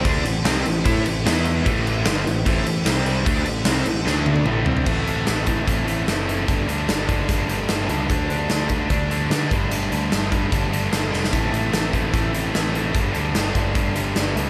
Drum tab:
CC |x-x-x-x-x-x-x-x-|x-x-x-x-x-x-x-x-|x-x-x-x---------|x---------------|
HH |----------------|----------------|----------------|--x-x-x-x-x-x-x-|
SD |----o-------o---|----o-------o---|----o---o-------|----o-------o---|
T1 |----------------|----------------|----------oo----|----------------|
T2 |----------------|----------------|------------o---|----------------|
FT |----------------|----------------|--------------oo|----------------|
BD |o-------o-------|o-------o-------|o---------------|o-----o-o-------|

CC |----------------|----------------|----------------|----------------|
HH |x-x-x-x-x-x-x-x-|x-x-x-x-x-x-x-x-|x-x-x-x-x-x-x---|x-x-x-x-x-x-x-x-|
SD |----o-------o---|----o-------o---|----o-------o-oo|----o-------o---|
T1 |----------------|----------------|----------------|----------------|
T2 |----------------|----------------|----------------|----------------|
FT |----------------|----------------|----------------|----------------|
BD |o-----o-o-------|o-----o-o-----o-|------o-o-------|o-----o-o-------|

CC |----------------|
HH |x-x-x-x-x-x-x-x-|
SD |----o-------o---|
T1 |----------------|
T2 |----------------|
FT |----------------|
BD |o-----o-o-------|